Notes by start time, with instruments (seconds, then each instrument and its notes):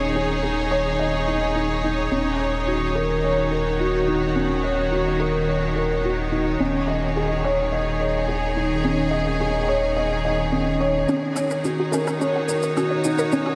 Already playing: sub bass D#1, string section D#3 D#4 G#4 C#5, felt piano C#4 D#4 G#4 C#5 D#5
0.16 felt piano G#4
0.43 felt piano G#4
0.71 felt piano C#5
0.99 felt piano D#5
1.27 felt piano D#4
1.55 felt piano D#4
1.84 felt piano D#4
2.11 sub bass D#1, string section D#3, felt piano C#4
2.39 felt piano C#5
2.67 felt piano F#4
2.95 felt piano A#4
3.20 string section F#4, felt piano C#5
3.51 felt piano A#4
3.80 felt piano F#4
4.08 felt piano D#4
4.36 felt piano C#4
4.64 felt piano C#5
4.92 felt piano F#4
5.20 felt piano A#4
5.48 felt piano C#5
5.76 felt piano A#4
6.04 felt piano F#4
6.32 felt piano D#4
6.60 sub bass D#1, felt piano C#4
6.76 string section G#4
6.88 felt piano D#5
7.16 felt piano G#4
7.44 felt piano C#5
7.72 felt piano D#5
8.00 felt piano C#5
8.28 felt piano G#4
8.56 felt piano D#4
8.84 felt piano C#4
9.11 felt piano D#5
9.40 felt piano G#4
9.68 felt piano C#5
9.97 felt piano D#5
10.25 felt piano D#5
10.52 felt piano C#4
10.80 felt piano C#5
11.08 felt piano C#4, synth arpeggio sound C#4, shaker
11.23 synth arpeggio sound C#5
11.35 synth arpeggio sound C#4, felt piano C#5, low woodblock, shaker
11.45 string section D#4
11.51 synth arpeggio sound A#4, string section C#5, shaker
11.64 synth arpeggio sound C#4, felt piano F#4, shaker
11.80 synth arpeggio sound F#4
11.92 synth arpeggio sound C#4, felt piano A#4, shaker
12.07 synth arpeggio sound A#4, low woodblock, shaker
12.20 synth arpeggio sound C#4, string section F#4, felt piano C#5, shaker
12.36 synth arpeggio sound F#4
12.48 synth arpeggio sound C#4, felt piano A#4, shaker
12.63 synth arpeggio sound A#4, shaker
12.76 synth arpeggio sound C#4, felt piano F#4, low woodblock, shaker
12.91 synth arpeggio sound C#5
13.04 synth arpeggio sound C#4, felt piano D#4, shaker
13.18 synth arpeggio sound A#4, shaker
13.32 felt piano C#4, synth arpeggio sound C#4, shaker
13.46 synth arpeggio sound F#4, low woodblock